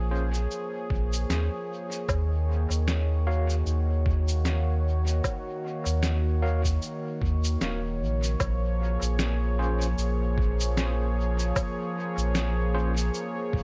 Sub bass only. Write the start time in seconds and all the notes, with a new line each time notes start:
Already playing: A#1
0.90 A#1
1.29 D#2
2.09 D#2
2.70 D#2
3.66 D#2
5.86 D#2
7.22 D#2
7.61 D#1
8.01 A#1
8.40 A#1
9.02 A#1
9.98 A#1
12.18 A#1
13.53 A#1